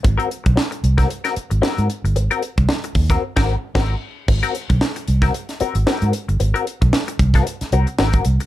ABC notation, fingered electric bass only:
X:1
M:4/4
L:1/16
Q:"Swing 16ths" 1/4=113
K:Abmix
V:1 name="Fingered electric bass" clef=bass
A,,, z2 _C,, z2 =C,,2 z3 A,,, z A,, z =G,,, | A,,, z2 C,, z2 E,,2 z A,,,2 z A,,,2 z2 | A,,, z2 _C,, z2 =C,,2 z3 A,,, z A,, z =G,,, | A,,, z2 _C,, z2 =C,,2 z2 C,, z A,,,2 C,, z |]